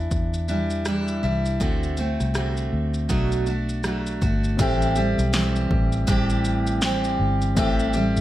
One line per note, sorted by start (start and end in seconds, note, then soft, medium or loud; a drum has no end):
0.00 0.48 E3 medium
0.00 0.49 D4 medium
0.00 0.47 E4 medium
0.11 1.19 E2 medium
0.11 kick medium
0.11 shaker medium
0.34 shaker soft
0.48 0.84 E3 soft
0.48 0.85 G3 soft
0.48 0.86 D4 medium
0.48 0.86 E4 medium
0.48 shaker medium
0.70 shaker soft
0.85 1.23 E3 medium
0.85 1.24 G3 medium
0.85 1.23 D4 medium
0.85 1.22 E4 medium
0.85 cross-stick medium
0.85 shaker medium
1.08 shaker soft
1.23 1.58 C2 medium
1.23 1.60 E3 soft
1.23 1.61 G3 soft
1.23 1.61 D4 medium
1.23 1.61 E4 medium
1.46 shaker soft
1.60 2.16 D2 medium
1.60 1.98 D3 medium
1.60 1.98 A3 medium
1.60 1.98 C4 medium
1.60 1.96 F#4 medium
1.60 kick loud
1.60 shaker medium
1.83 shaker soft
1.97 2.34 A3 soft
1.97 2.35 C4 soft
1.97 2.35 F#4 soft
1.97 shaker medium
2.20 2.69 C2 medium
2.20 cross-stick soft
2.20 shaker soft
2.34 3.09 D3 medium
2.34 3.10 A3 medium
2.34 3.10 C4 medium
2.34 3.10 F#4 medium
2.34 cross-stick medium
2.34 shaker medium
2.57 shaker soft
2.73 3.07 D2 medium
2.94 shaker soft
3.09 4.18 B1 medium
3.09 3.47 B2 medium
3.09 3.47 F#3 medium
3.09 3.47 A3 medium
3.09 3.47 D4 medium
3.09 3.45 F#4 medium
3.09 kick medium
3.09 shaker medium
3.32 shaker medium
3.46 3.84 A3 soft
3.46 3.85 D4 soft
3.46 3.84 F#4 soft
3.46 shaker medium
3.69 shaker soft
3.84 4.22 F#3 medium
3.84 4.22 A3 medium
3.84 4.22 D4 medium
3.84 4.20 F#4 medium
3.84 cross-stick medium
3.84 shaker medium
4.06 shaker soft
4.21 4.56 G1 medium
4.21 4.60 A3 soft
4.21 4.60 D4 soft
4.21 4.59 F#4 medium
4.21 kick medium
4.21 shaker soft
4.44 shaker soft
4.57 5.15 A1 loud
4.57 4.96 A2 medium
4.57 4.97 E3 medium
4.57 4.97 G3 medium
4.57 7.52 C4 medium
4.57 4.96 C4 medium
4.57 7.53 G4 medium
4.57 7.53 A4 medium
4.57 7.54 E5 medium
4.57 kick loud
4.57 shaker medium
4.61 4.95 G4 medium
4.82 shaker medium
4.96 5.33 G3 soft
4.96 5.34 C4 medium
4.96 5.33 G4 medium
4.96 shaker medium
5.18 5.67 B1 medium
5.18 shaker medium
5.33 6.08 E3 medium
5.33 6.08 G3 medium
5.33 6.09 C4 medium
5.33 6.09 G4 medium
5.33 snare loud
5.33 shaker medium
5.56 shaker soft
5.71 6.05 A1 loud
5.71 kick medium
5.92 shaker soft
6.07 7.16 A1 loud
6.07 6.82 A2 medium
6.07 6.82 E3 medium
6.07 6.83 G3 medium
6.07 6.84 C4 medium
6.07 6.85 G4 loud
6.07 kick medium
6.07 shaker medium
6.30 shaker medium
6.45 shaker medium
6.67 shaker medium
6.81 7.57 E3 medium
6.81 7.57 G3 medium
6.81 7.58 C4 medium
6.81 7.59 G4 medium
6.81 snare loud
6.81 shaker medium
7.04 shaker medium
7.19 7.54 G1 medium
7.42 shaker soft
7.55 8.12 A1 loud
7.55 7.94 A2 medium
7.55 7.94 E3 medium
7.55 7.95 G3 medium
7.55 8.21 C4 medium
7.55 7.94 C4 medium
7.55 8.21 G4 medium
7.55 7.93 G4 loud
7.55 8.21 A4 medium
7.55 8.21 E5 medium
7.55 kick loud
7.55 shaker medium
7.79 shaker medium
7.93 8.21 G3 soft
7.93 8.21 C4 medium
7.93 8.21 G4 medium
7.93 shaker medium
8.16 8.21 G1 medium
8.16 shaker medium